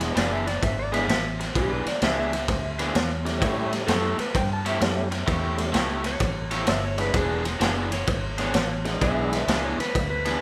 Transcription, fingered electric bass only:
Already playing: E1
0.16 F#1
0.62 G#1
1.08 A1
1.55 B1
2.02 C#2
2.48 D2
2.95 E2
3.42 A2
3.88 F#2
4.18 muted fingered electric bass stroke
4.35 G2
4.81 F#2
5.28 E2
5.74 C#2
6.20 A1
6.67 G1
7.14 E1
7.60 F#1
8.08 G#1
8.54 A1
9.01 B1
9.47 C#2
9.78 muted fingered electric bass stroke
9.95 D2

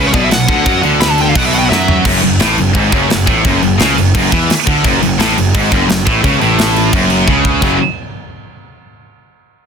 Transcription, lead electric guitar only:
0.07 C#5
0.14 D5
0.24 E5
0.32 F#5
1.01 B5
1.11 A5
1.21 G5
1.29 F5
1.36 F#5
1.46 E5
1.55 F#5 G5
1.65 F#5
1.69 E5

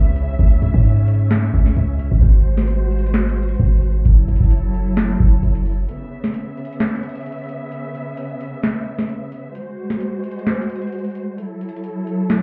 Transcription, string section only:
Already playing: C#3 B3 E5
0.39 C#4
2.22 G#3 F#4 C5
4.05 F#3 E4 A4
5.88 C#3 B3 E5
9.55 G#3 F#4 C5
11.38 F#3 E4 A4

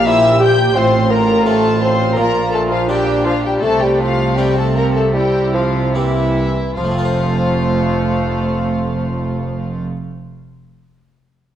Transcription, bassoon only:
0.06 E4
0.40 G4
0.75 C4
1.11 A#3
1.46 A3
1.82 C4
2.18 A#3
2.55 A3
2.72 F3
2.90 G3
3.26 F3
3.46 G3
3.63 A3
3.83 G3
4.00 F3
4.39 G3
4.56 A3
4.76 A#3
4.95 A3
5.14 G3
5.54 F3
5.95 E3
6.77 F3

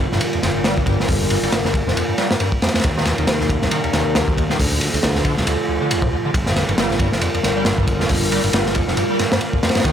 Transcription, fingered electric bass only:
0.12 F1
0.43 G1
1.09 G1
1.43 G1
1.52 G1
1.87 F1
2.84 D#2
3.19 D#2
3.28 D#2
3.63 C2
3.94 D#2
4.59 D2
4.94 D2
5.03 D2
5.38 C2
6.34 G1
6.69 G1
6.78 G1
7.13 F1
7.44 G1
8.10 G1
8.44 G1
8.53 G1
8.88 F1
9.85 D#2

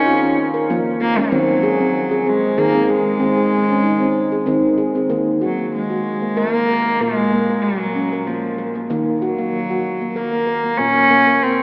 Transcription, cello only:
Already playing: C#4
1.01 A#3
1.19 F#3
2.28 G#3
2.59 A#3
2.89 G#3
5.44 F#3
5.75 G#3
6.37 A#3
7.01 G#3
7.62 F#3
8.26 F3
9.21 F#3
10.16 A#3
10.78 C#4
11.42 C4

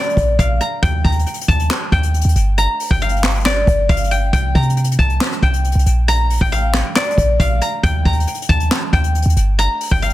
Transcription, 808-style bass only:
0.17 A#1
0.39 A#1
0.83 D#2
1.05 D#2
1.48 D#2
1.92 D#2
2.25 D#2
2.36 G1
2.91 G1
3.67 G1
3.89 G1
4.33 C2
4.55 C3
4.99 C2
5.43 C2
5.75 C2
5.86 A#1
6.41 A1
7.18 A#1
7.40 A#1
7.83 D#2
8.05 D#2
8.49 D#2
8.93 D#2
9.26 D#2
9.37 G1
9.91 G1

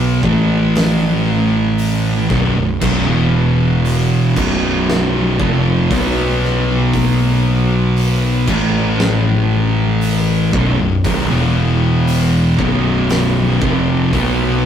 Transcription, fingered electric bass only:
Already playing: B1
0.23 A1
2.30 B0
2.56 B0
2.82 B0
3.09 E1
4.36 B0
5.40 F1
5.90 B1
8.48 A1
10.53 B0
10.80 B0
11.05 B0
11.31 E1
12.59 B0
13.62 F1
14.12 B1

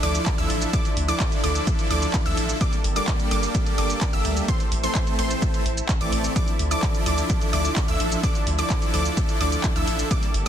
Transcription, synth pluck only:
0.03 D6
0.38 E6
0.73 D6
1.08 D6
1.44 D6
1.91 D6
2.26 E6
2.61 D6
2.96 D6
3.31 D6
3.78 D6
4.13 E6
4.48 C6
4.83 C6
5.19 C6
6.01 D6
6.36 D6
6.71 D6
7.06 D6
7.53 D6
7.88 E6
8.23 D6
8.59 D6
8.94 D6
9.41 D6
9.76 E6
10.11 D6

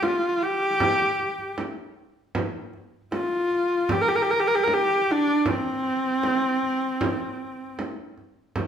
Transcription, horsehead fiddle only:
0.03 F4
0.42 G4
3.14 F4
3.91 G4
4.01 A#4
4.08 G4
4.15 A#4
4.22 G4
4.30 A#4
4.40 G4
4.47 A#4
4.55 G4
4.63 A#4
4.73 G4
5.11 D4
5.49 C4

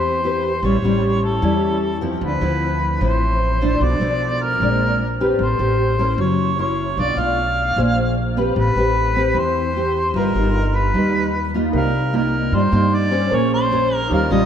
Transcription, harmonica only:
Already playing: C5
0.65 C#5
1.25 A4
2.24 B4
3.02 C5
3.83 D5
4.43 A#4
5.42 C5
6.20 C#5
6.59 C#5
6.99 D5
7.19 F5
8.58 B4
9.38 C5
10.17 A#4
10.76 B4
11.76 A#4
12.16 A#4
12.55 C5
12.95 D5
13.34 C#5
13.54 C5
13.96 A#4
14.13 A#4
14.32 D#5

